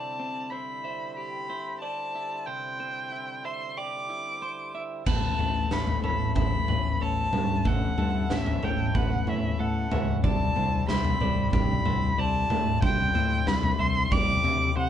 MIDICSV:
0, 0, Header, 1, 7, 480
1, 0, Start_track
1, 0, Tempo, 647948
1, 1831, Time_signature, 4, 2, 24, 8
1, 11033, End_track
2, 0, Start_track
2, 0, Title_t, "Violin"
2, 0, Program_c, 0, 40
2, 0, Note_on_c, 0, 81, 67
2, 374, Note_on_c, 0, 83, 62
2, 385, Note_off_c, 0, 81, 0
2, 852, Note_off_c, 0, 83, 0
2, 856, Note_on_c, 0, 83, 65
2, 1314, Note_off_c, 0, 83, 0
2, 1342, Note_on_c, 0, 81, 64
2, 1824, Note_on_c, 0, 79, 67
2, 1835, Note_off_c, 0, 81, 0
2, 2555, Note_on_c, 0, 84, 63
2, 2566, Note_off_c, 0, 79, 0
2, 2794, Note_on_c, 0, 86, 69
2, 2805, Note_off_c, 0, 84, 0
2, 3515, Note_off_c, 0, 86, 0
2, 3761, Note_on_c, 0, 81, 70
2, 4240, Note_on_c, 0, 83, 70
2, 4251, Note_off_c, 0, 81, 0
2, 4473, Note_off_c, 0, 83, 0
2, 4477, Note_on_c, 0, 83, 66
2, 4699, Note_off_c, 0, 83, 0
2, 4725, Note_on_c, 0, 83, 78
2, 5200, Note_on_c, 0, 81, 72
2, 5211, Note_off_c, 0, 83, 0
2, 5682, Note_on_c, 0, 78, 70
2, 5693, Note_off_c, 0, 81, 0
2, 6160, Note_on_c, 0, 76, 69
2, 6171, Note_off_c, 0, 78, 0
2, 6402, Note_on_c, 0, 79, 64
2, 6413, Note_off_c, 0, 76, 0
2, 6642, Note_on_c, 0, 78, 73
2, 6653, Note_off_c, 0, 79, 0
2, 6882, Note_on_c, 0, 76, 67
2, 6893, Note_off_c, 0, 78, 0
2, 7112, Note_on_c, 0, 78, 70
2, 7123, Note_off_c, 0, 76, 0
2, 7469, Note_off_c, 0, 78, 0
2, 7594, Note_on_c, 0, 81, 80
2, 8040, Note_off_c, 0, 81, 0
2, 8069, Note_on_c, 0, 83, 84
2, 8516, Note_off_c, 0, 83, 0
2, 8545, Note_on_c, 0, 83, 85
2, 9030, Note_on_c, 0, 81, 83
2, 9041, Note_off_c, 0, 83, 0
2, 9505, Note_off_c, 0, 81, 0
2, 9508, Note_on_c, 0, 79, 86
2, 9984, Note_on_c, 0, 83, 84
2, 9995, Note_off_c, 0, 79, 0
2, 10223, Note_on_c, 0, 84, 85
2, 10234, Note_off_c, 0, 83, 0
2, 10464, Note_on_c, 0, 86, 95
2, 10475, Note_off_c, 0, 84, 0
2, 10941, Note_off_c, 0, 86, 0
2, 10951, Note_on_c, 0, 78, 74
2, 11033, Note_off_c, 0, 78, 0
2, 11033, End_track
3, 0, Start_track
3, 0, Title_t, "Clean electric guitar"
3, 0, Program_c, 1, 27
3, 0, Note_on_c, 1, 74, 59
3, 384, Note_on_c, 1, 72, 51
3, 407, Note_off_c, 1, 74, 0
3, 623, Note_on_c, 1, 76, 49
3, 1108, Note_off_c, 1, 72, 0
3, 1108, Note_on_c, 1, 72, 45
3, 1345, Note_off_c, 1, 72, 0
3, 1348, Note_on_c, 1, 74, 50
3, 1370, Note_off_c, 1, 76, 0
3, 1828, Note_off_c, 1, 74, 0
3, 1831, Note_on_c, 1, 72, 63
3, 2064, Note_off_c, 1, 72, 0
3, 2073, Note_on_c, 1, 72, 50
3, 2553, Note_off_c, 1, 72, 0
3, 2556, Note_on_c, 1, 76, 52
3, 2795, Note_off_c, 1, 76, 0
3, 2798, Note_on_c, 1, 74, 56
3, 3273, Note_off_c, 1, 74, 0
3, 3276, Note_on_c, 1, 72, 53
3, 3514, Note_off_c, 1, 72, 0
3, 3517, Note_on_c, 1, 76, 52
3, 3753, Note_off_c, 1, 76, 0
3, 3755, Note_on_c, 1, 71, 67
3, 4233, Note_on_c, 1, 69, 64
3, 4255, Note_off_c, 1, 71, 0
3, 4476, Note_on_c, 1, 73, 57
3, 4951, Note_off_c, 1, 73, 0
3, 4954, Note_on_c, 1, 71, 53
3, 4976, Note_off_c, 1, 69, 0
3, 5193, Note_off_c, 1, 71, 0
3, 5196, Note_on_c, 1, 73, 64
3, 5671, Note_off_c, 1, 73, 0
3, 5674, Note_on_c, 1, 69, 76
3, 5903, Note_off_c, 1, 69, 0
3, 5911, Note_on_c, 1, 69, 61
3, 6391, Note_off_c, 1, 69, 0
3, 6394, Note_on_c, 1, 73, 66
3, 6628, Note_off_c, 1, 73, 0
3, 6631, Note_on_c, 1, 71, 70
3, 7106, Note_on_c, 1, 69, 62
3, 7109, Note_off_c, 1, 71, 0
3, 7347, Note_off_c, 1, 69, 0
3, 7348, Note_on_c, 1, 76, 58
3, 7581, Note_off_c, 1, 76, 0
3, 7584, Note_on_c, 1, 74, 80
3, 8060, Note_off_c, 1, 74, 0
3, 8062, Note_on_c, 1, 72, 72
3, 8304, Note_off_c, 1, 72, 0
3, 8307, Note_on_c, 1, 74, 69
3, 8781, Note_off_c, 1, 74, 0
3, 8784, Note_on_c, 1, 72, 61
3, 9023, Note_off_c, 1, 72, 0
3, 9026, Note_on_c, 1, 74, 68
3, 9500, Note_off_c, 1, 74, 0
3, 9502, Note_on_c, 1, 72, 82
3, 9734, Note_off_c, 1, 72, 0
3, 9743, Note_on_c, 1, 72, 67
3, 10215, Note_off_c, 1, 72, 0
3, 10218, Note_on_c, 1, 76, 71
3, 10455, Note_off_c, 1, 76, 0
3, 10458, Note_on_c, 1, 74, 73
3, 10937, Note_off_c, 1, 74, 0
3, 10940, Note_on_c, 1, 72, 69
3, 11033, Note_off_c, 1, 72, 0
3, 11033, End_track
4, 0, Start_track
4, 0, Title_t, "Clean electric guitar"
4, 0, Program_c, 2, 27
4, 0, Note_on_c, 2, 48, 47
4, 0, Note_on_c, 2, 64, 42
4, 144, Note_on_c, 2, 60, 48
4, 389, Note_off_c, 2, 64, 0
4, 389, Note_on_c, 2, 64, 45
4, 628, Note_on_c, 2, 72, 52
4, 867, Note_on_c, 2, 67, 48
4, 1108, Note_off_c, 2, 48, 0
4, 1108, Note_off_c, 2, 64, 0
4, 1111, Note_on_c, 2, 64, 43
4, 1342, Note_off_c, 2, 72, 0
4, 1349, Note_off_c, 2, 60, 0
4, 1351, Note_on_c, 2, 72, 51
4, 1585, Note_off_c, 2, 64, 0
4, 1594, Note_on_c, 2, 64, 40
4, 1833, Note_on_c, 2, 48, 50
4, 2072, Note_off_c, 2, 67, 0
4, 2074, Note_on_c, 2, 60, 50
4, 2303, Note_off_c, 2, 64, 0
4, 2312, Note_on_c, 2, 64, 43
4, 2546, Note_off_c, 2, 72, 0
4, 2555, Note_on_c, 2, 72, 51
4, 2796, Note_on_c, 2, 67, 52
4, 3026, Note_off_c, 2, 64, 0
4, 3035, Note_off_c, 2, 48, 0
4, 3035, Note_on_c, 2, 64, 44
4, 3267, Note_off_c, 2, 72, 0
4, 3276, Note_off_c, 2, 60, 0
4, 3276, Note_on_c, 2, 72, 52
4, 3507, Note_off_c, 2, 64, 0
4, 3516, Note_on_c, 2, 64, 41
4, 3756, Note_off_c, 2, 64, 0
4, 3756, Note_off_c, 2, 72, 0
4, 3757, Note_off_c, 2, 67, 0
4, 3757, Note_on_c, 2, 45, 54
4, 3995, Note_on_c, 2, 57, 55
4, 4236, Note_on_c, 2, 61, 51
4, 4472, Note_on_c, 2, 69, 59
4, 4716, Note_on_c, 2, 64, 56
4, 4945, Note_off_c, 2, 61, 0
4, 4954, Note_on_c, 2, 61, 49
4, 4956, Note_off_c, 2, 45, 0
4, 5188, Note_off_c, 2, 69, 0
4, 5194, Note_off_c, 2, 57, 0
4, 5197, Note_on_c, 2, 69, 62
4, 5428, Note_off_c, 2, 61, 0
4, 5436, Note_on_c, 2, 61, 52
4, 5673, Note_on_c, 2, 45, 55
4, 5915, Note_on_c, 2, 57, 56
4, 6145, Note_off_c, 2, 61, 0
4, 6154, Note_on_c, 2, 61, 55
4, 6387, Note_off_c, 2, 69, 0
4, 6395, Note_on_c, 2, 69, 63
4, 6627, Note_off_c, 2, 64, 0
4, 6630, Note_on_c, 2, 64, 59
4, 6864, Note_off_c, 2, 61, 0
4, 6870, Note_off_c, 2, 45, 0
4, 6873, Note_on_c, 2, 61, 53
4, 7100, Note_off_c, 2, 69, 0
4, 7109, Note_on_c, 2, 69, 62
4, 7110, Note_off_c, 2, 57, 0
4, 7342, Note_off_c, 2, 61, 0
4, 7351, Note_on_c, 2, 61, 52
4, 7584, Note_on_c, 2, 48, 62
4, 7587, Note_off_c, 2, 69, 0
4, 7589, Note_off_c, 2, 61, 0
4, 7826, Note_on_c, 2, 60, 61
4, 8068, Note_off_c, 2, 64, 0
4, 8068, Note_on_c, 2, 64, 55
4, 8305, Note_on_c, 2, 72, 70
4, 8545, Note_on_c, 2, 67, 63
4, 8774, Note_off_c, 2, 64, 0
4, 8781, Note_off_c, 2, 48, 0
4, 8783, Note_on_c, 2, 64, 59
4, 9016, Note_off_c, 2, 72, 0
4, 9022, Note_off_c, 2, 60, 0
4, 9025, Note_on_c, 2, 72, 65
4, 9254, Note_off_c, 2, 64, 0
4, 9263, Note_on_c, 2, 64, 54
4, 9501, Note_on_c, 2, 48, 65
4, 9741, Note_off_c, 2, 67, 0
4, 9741, Note_on_c, 2, 60, 63
4, 9971, Note_off_c, 2, 64, 0
4, 9980, Note_on_c, 2, 64, 56
4, 10211, Note_off_c, 2, 72, 0
4, 10220, Note_on_c, 2, 72, 66
4, 10458, Note_on_c, 2, 67, 67
4, 10690, Note_off_c, 2, 64, 0
4, 10699, Note_off_c, 2, 48, 0
4, 10699, Note_on_c, 2, 64, 59
4, 10928, Note_off_c, 2, 72, 0
4, 10937, Note_on_c, 2, 72, 72
4, 10939, Note_off_c, 2, 60, 0
4, 11033, Note_off_c, 2, 64, 0
4, 11033, Note_off_c, 2, 67, 0
4, 11033, Note_off_c, 2, 72, 0
4, 11033, End_track
5, 0, Start_track
5, 0, Title_t, "Harmonium"
5, 0, Program_c, 3, 20
5, 0, Note_on_c, 3, 50, 51
5, 0, Note_on_c, 3, 55, 47
5, 0, Note_on_c, 3, 64, 44
5, 0, Note_on_c, 3, 72, 58
5, 1813, Note_off_c, 3, 72, 0
5, 1827, Note_on_c, 3, 72, 60
5, 3726, Note_off_c, 3, 55, 0
5, 3727, Note_off_c, 3, 50, 0
5, 3727, Note_off_c, 3, 64, 0
5, 3734, Note_off_c, 3, 72, 0
5, 3751, Note_on_c, 3, 57, 57
5, 3751, Note_on_c, 3, 59, 54
5, 3755, Note_on_c, 3, 64, 66
5, 3757, Note_on_c, 3, 49, 57
5, 7556, Note_off_c, 3, 57, 0
5, 7556, Note_off_c, 3, 59, 0
5, 7559, Note_off_c, 3, 49, 0
5, 7590, Note_on_c, 3, 50, 71
5, 7590, Note_on_c, 3, 55, 62
5, 7590, Note_on_c, 3, 60, 60
5, 11033, Note_off_c, 3, 50, 0
5, 11033, Note_off_c, 3, 55, 0
5, 11033, Note_off_c, 3, 60, 0
5, 11033, Note_off_c, 3, 64, 0
5, 11033, End_track
6, 0, Start_track
6, 0, Title_t, "Fingered electric bass"
6, 0, Program_c, 4, 33
6, 3752, Note_on_c, 4, 33, 68
6, 3947, Note_off_c, 4, 33, 0
6, 3993, Note_on_c, 4, 33, 63
6, 4188, Note_off_c, 4, 33, 0
6, 4234, Note_on_c, 4, 33, 68
6, 4428, Note_off_c, 4, 33, 0
6, 4473, Note_on_c, 4, 33, 66
6, 4668, Note_off_c, 4, 33, 0
6, 4713, Note_on_c, 4, 33, 65
6, 4908, Note_off_c, 4, 33, 0
6, 4954, Note_on_c, 4, 33, 77
6, 5148, Note_off_c, 4, 33, 0
6, 5193, Note_on_c, 4, 33, 68
6, 5388, Note_off_c, 4, 33, 0
6, 5428, Note_on_c, 4, 43, 69
6, 5624, Note_off_c, 4, 43, 0
6, 5669, Note_on_c, 4, 33, 73
6, 5865, Note_off_c, 4, 33, 0
6, 5909, Note_on_c, 4, 43, 61
6, 6104, Note_off_c, 4, 43, 0
6, 6151, Note_on_c, 4, 33, 72
6, 6345, Note_off_c, 4, 33, 0
6, 6391, Note_on_c, 4, 33, 69
6, 6585, Note_off_c, 4, 33, 0
6, 6629, Note_on_c, 4, 33, 69
6, 6824, Note_off_c, 4, 33, 0
6, 6867, Note_on_c, 4, 45, 77
6, 7061, Note_off_c, 4, 45, 0
6, 7107, Note_on_c, 4, 45, 76
6, 7301, Note_off_c, 4, 45, 0
6, 7347, Note_on_c, 4, 37, 75
6, 7541, Note_off_c, 4, 37, 0
6, 7584, Note_on_c, 4, 36, 81
6, 7779, Note_off_c, 4, 36, 0
6, 7826, Note_on_c, 4, 36, 69
6, 8020, Note_off_c, 4, 36, 0
6, 8064, Note_on_c, 4, 36, 80
6, 8258, Note_off_c, 4, 36, 0
6, 8306, Note_on_c, 4, 36, 72
6, 8499, Note_off_c, 4, 36, 0
6, 8544, Note_on_c, 4, 36, 81
6, 8738, Note_off_c, 4, 36, 0
6, 8784, Note_on_c, 4, 36, 80
6, 8977, Note_off_c, 4, 36, 0
6, 9020, Note_on_c, 4, 36, 76
6, 9215, Note_off_c, 4, 36, 0
6, 9262, Note_on_c, 4, 45, 77
6, 9456, Note_off_c, 4, 45, 0
6, 9502, Note_on_c, 4, 36, 86
6, 9695, Note_off_c, 4, 36, 0
6, 9737, Note_on_c, 4, 45, 77
6, 9932, Note_off_c, 4, 45, 0
6, 9980, Note_on_c, 4, 36, 79
6, 10173, Note_off_c, 4, 36, 0
6, 10215, Note_on_c, 4, 36, 81
6, 10411, Note_off_c, 4, 36, 0
6, 10456, Note_on_c, 4, 36, 76
6, 10651, Note_off_c, 4, 36, 0
6, 10696, Note_on_c, 4, 48, 77
6, 10891, Note_off_c, 4, 48, 0
6, 10940, Note_on_c, 4, 48, 76
6, 11033, Note_off_c, 4, 48, 0
6, 11033, End_track
7, 0, Start_track
7, 0, Title_t, "Drums"
7, 3751, Note_on_c, 9, 43, 62
7, 3751, Note_on_c, 9, 49, 73
7, 3753, Note_on_c, 9, 36, 78
7, 3825, Note_off_c, 9, 43, 0
7, 3825, Note_off_c, 9, 49, 0
7, 3827, Note_off_c, 9, 36, 0
7, 3993, Note_on_c, 9, 43, 62
7, 4067, Note_off_c, 9, 43, 0
7, 4231, Note_on_c, 9, 38, 65
7, 4305, Note_off_c, 9, 38, 0
7, 4351, Note_on_c, 9, 43, 65
7, 4425, Note_off_c, 9, 43, 0
7, 4472, Note_on_c, 9, 47, 60
7, 4546, Note_off_c, 9, 47, 0
7, 4708, Note_on_c, 9, 43, 69
7, 4708, Note_on_c, 9, 47, 63
7, 4711, Note_on_c, 9, 36, 88
7, 4783, Note_off_c, 9, 43, 0
7, 4783, Note_off_c, 9, 47, 0
7, 4785, Note_off_c, 9, 36, 0
7, 4950, Note_on_c, 9, 43, 66
7, 5024, Note_off_c, 9, 43, 0
7, 5429, Note_on_c, 9, 43, 63
7, 5429, Note_on_c, 9, 47, 63
7, 5503, Note_off_c, 9, 43, 0
7, 5503, Note_off_c, 9, 47, 0
7, 5667, Note_on_c, 9, 43, 68
7, 5670, Note_on_c, 9, 36, 91
7, 5741, Note_off_c, 9, 43, 0
7, 5744, Note_off_c, 9, 36, 0
7, 5910, Note_on_c, 9, 43, 64
7, 5984, Note_off_c, 9, 43, 0
7, 6150, Note_on_c, 9, 38, 62
7, 6224, Note_off_c, 9, 38, 0
7, 6271, Note_on_c, 9, 43, 62
7, 6345, Note_off_c, 9, 43, 0
7, 6391, Note_on_c, 9, 47, 65
7, 6465, Note_off_c, 9, 47, 0
7, 6630, Note_on_c, 9, 36, 86
7, 6630, Note_on_c, 9, 43, 65
7, 6630, Note_on_c, 9, 47, 66
7, 6704, Note_off_c, 9, 36, 0
7, 6704, Note_off_c, 9, 43, 0
7, 6704, Note_off_c, 9, 47, 0
7, 6868, Note_on_c, 9, 43, 68
7, 6942, Note_off_c, 9, 43, 0
7, 7345, Note_on_c, 9, 43, 74
7, 7345, Note_on_c, 9, 47, 65
7, 7419, Note_off_c, 9, 43, 0
7, 7419, Note_off_c, 9, 47, 0
7, 7585, Note_on_c, 9, 36, 90
7, 7585, Note_on_c, 9, 43, 72
7, 7659, Note_off_c, 9, 36, 0
7, 7659, Note_off_c, 9, 43, 0
7, 7823, Note_on_c, 9, 43, 66
7, 7897, Note_off_c, 9, 43, 0
7, 8064, Note_on_c, 9, 38, 66
7, 8138, Note_off_c, 9, 38, 0
7, 8182, Note_on_c, 9, 43, 69
7, 8256, Note_off_c, 9, 43, 0
7, 8301, Note_on_c, 9, 47, 61
7, 8375, Note_off_c, 9, 47, 0
7, 8542, Note_on_c, 9, 43, 70
7, 8542, Note_on_c, 9, 47, 62
7, 8543, Note_on_c, 9, 36, 92
7, 8616, Note_off_c, 9, 43, 0
7, 8616, Note_off_c, 9, 47, 0
7, 8617, Note_off_c, 9, 36, 0
7, 8782, Note_on_c, 9, 43, 70
7, 8856, Note_off_c, 9, 43, 0
7, 9262, Note_on_c, 9, 43, 69
7, 9262, Note_on_c, 9, 47, 68
7, 9336, Note_off_c, 9, 43, 0
7, 9336, Note_off_c, 9, 47, 0
7, 9499, Note_on_c, 9, 43, 73
7, 9500, Note_on_c, 9, 36, 89
7, 9574, Note_off_c, 9, 36, 0
7, 9574, Note_off_c, 9, 43, 0
7, 9742, Note_on_c, 9, 43, 72
7, 9816, Note_off_c, 9, 43, 0
7, 9979, Note_on_c, 9, 38, 71
7, 10053, Note_off_c, 9, 38, 0
7, 10099, Note_on_c, 9, 43, 72
7, 10174, Note_off_c, 9, 43, 0
7, 10459, Note_on_c, 9, 36, 93
7, 10459, Note_on_c, 9, 43, 76
7, 10533, Note_off_c, 9, 36, 0
7, 10533, Note_off_c, 9, 43, 0
7, 10699, Note_on_c, 9, 43, 72
7, 10773, Note_off_c, 9, 43, 0
7, 11033, End_track
0, 0, End_of_file